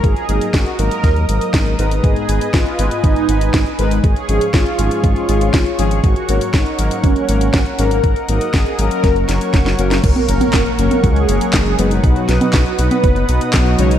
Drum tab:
CC |----------------|----------------|----------------|----------------|
HH |xxxxxxxxxxxxxxxx|xxxxxxxxxxxxxxxx|xxxxxxxxxxxxxxxx|xxxxxxxxxxxxxxxx|
CP |----------------|----------------|----------------|----------------|
SD |----o---o---o---|----o-------o---|----o-------o---|----o-------o---|
CG |----------------|----------------|----------------|----------------|
BD |o---o---o---o---|o---o---o---o---|o---o---o---o---|o---o---o---o---|

CC |----------------|x---------------|----------------|
HH |xxxxxxxxxxxxxxxx|xxxxxxxxxxxxxxxx|xxxxxxxxxxxxxxxx|
CP |----------------|----x-------x---|----x-------x---|
SD |----o---o-o-oo-o|----o-------o---|--o-o-------o---|
CG |----------------|-o-o---o--------|---o---o--------|
BD |o---o---o---o---|o---o---o---o---|o---o---o---o---|